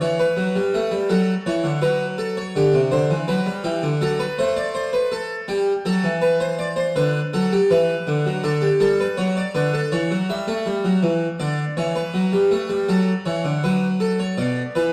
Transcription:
0.01 E3 C#5
0.19 B4
0.37 F#3
0.56 G3
0.74 A3
0.91 G3
1.09 F#3 A4
1.46 E3 C#5
1.64 D3
1.81 F#3 B4
2.18 A4
2.37 C#5
2.56 D3 G4
2.74 C3
2.92 D3 C5
3.11 E3
3.28 F#3 B4
3.46 G3
3.64 E3 G4
3.83 D3
4.01 F#3 A4
4.19 B4
4.39 A3 C5
4.57 D5
4.75 C5
4.93 B4
5.12 A4
5.48 G3 G4
5.85 F#3 A4
6.04 E3
6.22 B4
6.40 C5
6.59 D5
6.76 C5
6.96 D3 B4
7.33 F#3 A4
7.52 G4
7.71 E3 B4
8.07 D3
8.26 F#3
8.44 D3 A4
8.62 G4
8.80 G3 A4
9.00 B4
9.17 F#3 C#5
9.37 D5
9.55 D3 B4
9.74 A4
9.92 E3 C#5
10.11 F#3
10.30 G3 E5
10.47 A3
10.66 G3
10.84 F#3
11.03 E3
11.40 D3 D5
11.77 E3 C#5
11.96 B4
12.14 F#3
12.33 G3
12.51 A3
12.69 G3
12.88 F#3 A4
13.26 E3 C#5
13.44 D3
13.64 F#3 B4
14.00 A4
14.20 C#5
14.38 B2 D5
14.75 E3 B4

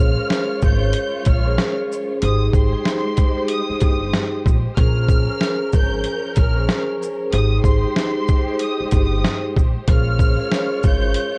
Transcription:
Already playing: A#1 G#3 C#4 F4 G#4 A#4 C5 C#5 F6
0.18 C#4 G#4 A#4 C5
0.30 C#4 G#4 A#4 C5, snare, closed hi-hat
0.62 G#1 G6, kick, shaker
0.93 closed hi-hat
1.25 A#1 F6, kick, closed hi-hat, shaker
1.45 C#4 G#4 A#4 C5
1.58 C#4 G#4 A#4 C5, snare, closed hi-hat
1.90 C#4 G#4 A#4 C5, shaker
2.22 G#1 G#3 D#4 G4 G#4 C5 D#6, closed hi-hat
2.53 G#1 C6, kick, shaker
2.72 D#4 G4 G#4 C5
2.85 snare, closed hi-hat
3.17 kick, closed hi-hat, shaker
3.37 D#4 G4 G#4 C5
3.48 D#6, closed hi-hat
3.70 muted upright bass stroke
3.80 G1 D#6, kick, closed hi-hat, shaker
4.13 snare, closed hi-hat
4.46 A#1, kick, shaker
4.75 A#1 F3 C#4 G#4 A#4 C5 F6, kick, closed hi-hat
5.09 kick, shaker
5.28 C#4 G#4 A#4 C5
5.40 C#4 G#4 A#4 C5, snare, closed hi-hat
5.73 G#1 G6, kick, shaker
6.04 closed hi-hat
6.36 A#1 F6, kick, closed hi-hat, shaker
6.56 C#4 G#4 A#4 C5
6.69 C#4 G#4 A#4 C5, snare, closed hi-hat
7.00 C#4 G#4 A#4 C5, shaker
7.32 G#1 G#3 D#4 G4 G#4 C5 D#6, closed hi-hat
7.62 G#1 C6, kick, shaker
7.83 D#4 G4 G#4 C5
7.96 snare, closed hi-hat
8.28 kick, shaker
8.47 D#4 G4 G#4 C5
8.59 D#6, closed hi-hat
8.81 muted upright bass stroke
8.90 G1 D#6, kick, closed hi-hat, shaker
9.24 snare, closed hi-hat
9.56 A#1, kick, shaker
9.88 A#1 G#3 C#4 F4 G#4 A#4 C5 C#5 F6, kick, closed hi-hat
10.19 kick, shaker
10.39 C#4 G#4 A#4 C5
10.51 C#4 G#4 A#4 C5, snare, closed hi-hat
10.83 G#1 G6, kick, shaker
11.14 closed hi-hat

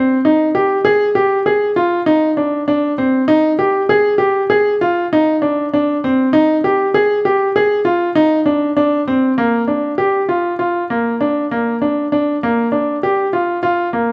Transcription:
Already playing: C4
0.25 D#4
0.55 G4
0.85 G#4
1.15 G4
1.46 G#4
1.76 F4
2.06 D#4
2.37 D4
2.68 D4
2.98 C4
3.28 D#4
3.59 G4
3.89 G#4
4.18 G4
4.50 G#4
4.81 F4
5.13 D#4
5.42 D4
5.73 D4
6.04 C4
6.33 D#4
6.64 G4
6.94 G#4
7.25 G4
7.56 G#4
7.85 F4
8.15 D#4
8.46 D4
8.77 D4
9.08 C4
9.38 A#3
9.68 D4
9.98 G4
10.29 F4
10.59 F4
10.90 A#3
11.21 D4
11.51 A#3
11.82 D4
12.12 D4
12.43 A#3
12.72 D4
13.03 G4
13.33 F4
13.63 F4
13.93 A#3

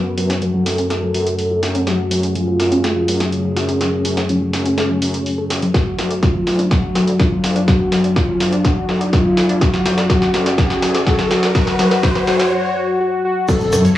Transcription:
Already playing: F#2 A3 C#4 F#4 B4
0.18 F#2 F#3, open hi-hat
0.30 C#5, snare, closed hi-hat
0.42 F#3 A4, closed hi-hat
0.54 F#3
0.66 F#2, snare, open hi-hat
0.78 C#4, closed hi-hat
0.90 A3, snare, closed hi-hat
1.03 F#3
1.15 F#2, open hi-hat
1.27 closed hi-hat
1.39 open hi-hat
1.51 F#3
1.63 F#2 F#4, snare, open hi-hat
1.75 C#4, closed hi-hat
1.87 F#3 F#4 G#4, snare, closed hi-hat
2.11 F#2 F#3, open hi-hat
2.23 C#5, closed hi-hat
2.36 F#3 F4, closed hi-hat
2.48 F#3
2.60 F#2, snare, open hi-hat
2.72 C#4, closed hi-hat
2.84 A3, snare, closed hi-hat
2.96 F#3
3.08 F#2, open hi-hat
3.20 snare, closed hi-hat
3.32 C#4, closed hi-hat
3.44 F#3
3.56 F#2 F#4, snare, open hi-hat
3.69 C#4, closed hi-hat
3.81 F#3, snare, closed hi-hat
4.05 F#2 F#3, open hi-hat
4.17 C#5, snare, closed hi-hat
4.29 F#3 C#4, closed hi-hat
4.41 F#3
4.53 F#2, snare, open hi-hat
4.65 C#4, closed hi-hat
4.77 A3, snare, closed hi-hat
4.90 F#3
5.02 F#2, open hi-hat
5.14 closed hi-hat
5.26 open hi-hat
5.38 A4
5.50 F#1 F#4, snare, open hi-hat
5.62 F#3, closed hi-hat
5.74 F#3 D4 F#4, kick, snare, closed hi-hat, riser
5.98 D2 F#3, snare, open hi-hat
6.11 D5, closed hi-hat
6.23 F#3 F4, kick, snare, closed hi-hat
6.35 F#3
6.47 D2, snare, open hi-hat
6.59 D4, closed hi-hat
6.71 F#3 F#4, kick, snare, closed hi-hat
6.95 D2 F#3, snare, open hi-hat
7.07 D5, closed hi-hat
7.19 F#3 F4, kick, snare, closed hi-hat
7.32 F#3
7.44 D2, snare, open hi-hat
7.56 D4, closed hi-hat
7.68 F#3 F#4, kick, snare, closed hi-hat
7.92 D2 F#3, snare, open hi-hat
8.04 D5, closed hi-hat
8.16 F#3 F4, kick, snare, closed hi-hat
8.28 F#3
8.40 D2, snare, open hi-hat
8.52 D4, closed hi-hat
8.65 F#3 F#4, kick, snare, closed hi-hat
8.89 D2 F#3, snare, open hi-hat
9.01 D5, closed hi-hat
9.13 F#3 F4, kick, snare, open hi-hat
9.25 F#3
9.37 D2, snare, open hi-hat
9.49 D4, closed hi-hat
9.61 F#3 C#4 F#4, kick, snare, closed hi-hat
9.74 snare
9.86 D2 F#3, snare, open hi-hat
9.98 D5, snare, closed hi-hat
10.10 F#3 F#4, kick, snare, closed hi-hat
10.22 snare
10.34 D2 F#3, snare, open hi-hat
10.46 D5, snare, closed hi-hat
10.58 F#3 F#4, kick, snare, closed hi-hat
10.70 snare
10.82 D2 F#3, snare, open hi-hat
10.95 D5, snare, closed hi-hat
11.07 F#3 F#4, kick, snare, closed hi-hat
11.19 snare
11.31 D2 F#3, snare, open hi-hat
11.43 D5, snare, closed hi-hat
11.55 F#3 F#4, kick, snare, closed hi-hat
11.67 snare
11.79 D2 F#3 F#4, snare, open hi-hat
11.91 snare, closed hi-hat
12.03 F#3 F#4, kick, snare, closed hi-hat
12.15 snare
12.27 D2 F#3 F#4, snare, open hi-hat
12.40 snare, closed hi-hat
12.52 F#4
12.76 F#4
13.00 F#4
13.25 F#4
13.48 F#3 A3 C#4 A4, kick, cross-stick, closed hi-hat, crash, impact, shaker
13.60 shaker
13.72 F#2 F#3, cross-stick, open hi-hat, shaker
13.85 C#5, closed hi-hat, shaker

